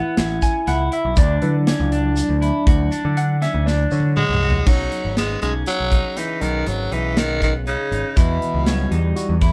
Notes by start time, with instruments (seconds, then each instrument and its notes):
Already playing: clean electric guitar B3, trombone E4, tine electric piano F#5
0.17 picked electric bass A1, clean electric guitar C#4, snare, closed hi-hat
0.42 tine electric piano G#5, kick, closed hi-hat, shaker
0.67 picked electric bass C#2, clean electric guitar E4, tine electric piano F#5, snare, closed hi-hat
0.92 clean electric guitar E4, tine electric piano E5, closed hi-hat
1.05 picked electric bass B1
1.17 picked electric bass D2, trombone D4, clean electric guitar D4, tine electric piano D5, kick, closed hi-hat, shaker
1.42 picked electric bass D3, tine electric piano F#3 D4 E4 B4, closed hi-hat
1.67 clean electric guitar C#4, tine electric piano D5, snare, closed hi-hat
1.80 picked electric bass C#2
1.92 clean electric guitar D4, closed hi-hat
2.17 closed hi-hat, shaker
2.29 picked electric bass D2
2.42 clean electric guitar E4, closed hi-hat
2.67 picked electric bass D2, clean electric guitar F#4, kick, closed hi-hat
2.92 clean electric guitar D4, closed hi-hat, shaker
3.05 picked electric bass D3
3.17 tine electric piano F#5, closed hi-hat
3.42 clean electric guitar C#4, tine electric piano E5, snare, closed hi-hat, shaker
3.54 picked electric bass D2
3.66 clean electric guitar D4, tine electric piano D5, snare
3.91 picked electric bass D3, tine electric piano C#5, shaker
4.00 high tom
4.17 tenor saxophone G#3, clean electric guitar F#4, mid tom
4.29 picked electric bass C2
4.34 mid tom
4.42 clean electric guitar F#4, shaker
4.50 floor tom
4.60 trombone D#3
4.66 picked electric bass B1, trombone C#3, tenor saxophone F#3, tine electric piano B3 C#4 D#4, clean electric guitar D#4, kick, crash, shaker
4.92 closed hi-hat
5.05 picked electric bass G#1
5.17 tenor saxophone G#3, clean electric guitar B3, snare, closed hi-hat
5.42 picked electric bass B1, tenor saxophone G#3, tine electric piano B3 C#4 D#4, clean electric guitar C#4, closed hi-hat
5.66 tenor saxophone F#3, closed hi-hat, shaker
5.80 picked electric bass B1
5.92 clean electric guitar D#4, kick, closed hi-hat
6.17 tenor saxophone E3, clean electric guitar D#4, snare, closed hi-hat
6.41 picked electric bass B1, tenor saxophone D#3, clean electric guitar B3, closed hi-hat, shaker
6.66 picked electric bass G#1, tenor saxophone F#3, closed hi-hat
6.92 picked electric bass B1, tenor saxophone E3, clean electric guitar D#4, closed hi-hat, shaker
7.17 tenor saxophone D#3, clean electric guitar B3, snare, closed hi-hat
7.42 tenor saxophone D#3, kick, closed hi-hat, shaker
7.67 tenor saxophone C#3, clean electric guitar D#4, closed hi-hat
7.92 picked electric bass G#1, clean electric guitar D#4, closed hi-hat, shaker
8.16 picked electric bass E2, tenor saxophone B2, trombone E3, clean electric guitar E4, kick, closed hi-hat, shaker
8.42 closed hi-hat
8.54 picked electric bass C#2
8.67 trombone F#3, tine electric piano G3 E4 F#4, clean electric guitar C#4, snare, closed hi-hat
8.91 picked electric bass E2, trombone G3, clean electric guitar D#4, closed hi-hat
9.15 tine electric piano G3 E4 F#4, closed hi-hat, shaker
9.29 picked electric bass E2
9.41 clean electric guitar E4, kick, snare, closed hi-hat